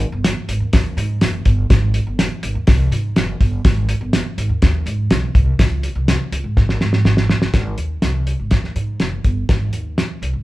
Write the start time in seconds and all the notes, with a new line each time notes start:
0.12 G1
0.24 snare, closed hi-hat
0.48 G#1, closed hi-hat
0.60 D#2
0.73 D#2, kick, snare, closed hi-hat
0.97 G#2, closed hi-hat
1.21 F#1, snare, closed hi-hat
1.45 G1, kick, closed hi-hat
1.70 G#1, kick, snare, closed hi-hat
1.94 closed hi-hat
2.07 G1
2.19 snare, closed hi-hat
2.43 G#1, closed hi-hat
2.55 D#2
2.67 C2, kick, snare, closed hi-hat
2.91 G#2, closed hi-hat
3.16 F#1, snare, closed hi-hat
3.41 G1, kick, closed hi-hat
3.65 G#1, kick, snare, closed hi-hat
3.89 closed hi-hat
4.01 G1
4.13 snare, closed hi-hat
4.38 G#1, closed hi-hat
4.49 D#2
4.62 D#2, kick, snare, closed hi-hat
4.86 G#2, closed hi-hat
5.10 B1, snare, closed hi-hat
5.35 C2, kick, closed hi-hat
5.59 C#2, kick, snare, closed hi-hat
5.83 closed hi-hat
5.95 C2
6.08 snare, closed hi-hat
6.32 C#2, closed hi-hat
6.44 G#2
6.57 G#1, kick, snare
6.69 snare
6.81 G#2, snare
6.93 snare
7.05 G#1, snare
7.17 snare
7.29 snare
7.41 G#1, snare
7.53 G#1, kick, snare, closed hi-hat
7.78 D#2, closed hi-hat
8.02 C2, snare, closed hi-hat
8.27 closed hi-hat
8.39 G#1
8.51 D#2, kick, snare, closed hi-hat
8.64 snare
8.76 G#2, closed hi-hat
9.00 F#1, snare, closed hi-hat
9.24 G1, kick, closed hi-hat
9.49 G#1, kick, snare, closed hi-hat
9.73 D#2, closed hi-hat
9.98 snare, closed hi-hat
10.22 C2, closed hi-hat
10.33 G#1